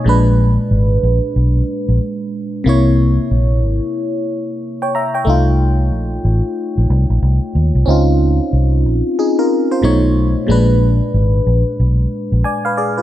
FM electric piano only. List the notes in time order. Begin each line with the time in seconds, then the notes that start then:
0.04 A#2 G#3 D4
0.09 B4
2.64 C3 A#3 E4
2.69 C#5
4.82 C#5 G5
4.95 E5 A#5
5.14 C#5 G5
5.25 A3 D#4
5.29 F4
7.86 C4 C#4 D#4
7.90 F4
9.19 D#4 G#4
9.39 F4 A#4
9.71 F4 C5
9.82 B2 A3 D#4 C#5
10.47 A#2 G#3 D4
10.51 B4
12.44 D5 G#5
12.65 B4 F5
12.77 G#4 D5
12.98 F4 B4